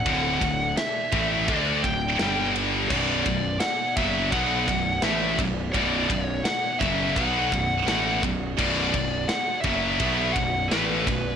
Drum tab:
CC |--------|x-------|--------|x-------|
RD |xxxxxxxx|-xxxxxxx|xxxxxxxx|-xxxxxxx|
SD |--o---o-|--o---o-|--o---o-|--o---o-|
BD |oo-ooo--|oo-ooo-o|oo-ooo-o|oo-ooo-o|